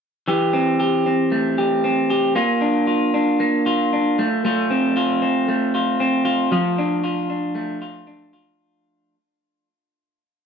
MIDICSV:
0, 0, Header, 1, 2, 480
1, 0, Start_track
1, 0, Tempo, 519481
1, 261, Time_signature, 4, 2, 24, 8
1, 9663, End_track
2, 0, Start_track
2, 0, Title_t, "Clean electric guitar"
2, 0, Program_c, 0, 27
2, 255, Note_on_c, 0, 52, 75
2, 261, Note_on_c, 0, 67, 62
2, 493, Note_on_c, 0, 60, 57
2, 726, Note_off_c, 0, 67, 0
2, 737, Note_on_c, 0, 67, 59
2, 970, Note_off_c, 0, 60, 0
2, 981, Note_on_c, 0, 60, 46
2, 1217, Note_on_c, 0, 57, 56
2, 1450, Note_off_c, 0, 67, 0
2, 1461, Note_on_c, 0, 67, 53
2, 1690, Note_off_c, 0, 60, 0
2, 1701, Note_on_c, 0, 60, 53
2, 1932, Note_off_c, 0, 67, 0
2, 1943, Note_on_c, 0, 67, 57
2, 2172, Note_off_c, 0, 57, 0
2, 2176, Note_off_c, 0, 67, 0
2, 2176, Note_on_c, 0, 58, 76
2, 2177, Note_off_c, 0, 52, 0
2, 2180, Note_on_c, 0, 65, 63
2, 2228, Note_off_c, 0, 60, 0
2, 2412, Note_on_c, 0, 62, 60
2, 2651, Note_off_c, 0, 65, 0
2, 2655, Note_on_c, 0, 65, 61
2, 2890, Note_off_c, 0, 62, 0
2, 2901, Note_on_c, 0, 62, 52
2, 3130, Note_off_c, 0, 58, 0
2, 3141, Note_on_c, 0, 58, 62
2, 3379, Note_off_c, 0, 65, 0
2, 3383, Note_on_c, 0, 65, 62
2, 3619, Note_off_c, 0, 62, 0
2, 3630, Note_on_c, 0, 62, 51
2, 3862, Note_off_c, 0, 58, 0
2, 3870, Note_on_c, 0, 57, 77
2, 3914, Note_off_c, 0, 62, 0
2, 4106, Note_off_c, 0, 57, 0
2, 4110, Note_on_c, 0, 57, 86
2, 4114, Note_off_c, 0, 65, 0
2, 4118, Note_on_c, 0, 65, 53
2, 4346, Note_on_c, 0, 60, 64
2, 4584, Note_off_c, 0, 65, 0
2, 4588, Note_on_c, 0, 65, 64
2, 4813, Note_off_c, 0, 60, 0
2, 4824, Note_on_c, 0, 60, 53
2, 5064, Note_off_c, 0, 57, 0
2, 5068, Note_on_c, 0, 57, 59
2, 5306, Note_off_c, 0, 65, 0
2, 5310, Note_on_c, 0, 65, 52
2, 5535, Note_off_c, 0, 60, 0
2, 5546, Note_on_c, 0, 60, 55
2, 5771, Note_off_c, 0, 65, 0
2, 5775, Note_on_c, 0, 65, 59
2, 6021, Note_on_c, 0, 53, 78
2, 6024, Note_off_c, 0, 65, 0
2, 6028, Note_on_c, 0, 65, 55
2, 6073, Note_off_c, 0, 60, 0
2, 6267, Note_on_c, 0, 62, 63
2, 6497, Note_off_c, 0, 65, 0
2, 6501, Note_on_c, 0, 65, 60
2, 6739, Note_off_c, 0, 62, 0
2, 6743, Note_on_c, 0, 62, 50
2, 6972, Note_off_c, 0, 57, 0
2, 6976, Note_on_c, 0, 57, 64
2, 7218, Note_off_c, 0, 65, 0
2, 7222, Note_on_c, 0, 65, 56
2, 7454, Note_off_c, 0, 62, 0
2, 7457, Note_on_c, 0, 62, 51
2, 7695, Note_off_c, 0, 65, 0
2, 7698, Note_on_c, 0, 65, 61
2, 8450, Note_off_c, 0, 53, 0
2, 8450, Note_off_c, 0, 57, 0
2, 8450, Note_off_c, 0, 62, 0
2, 8450, Note_off_c, 0, 65, 0
2, 9663, End_track
0, 0, End_of_file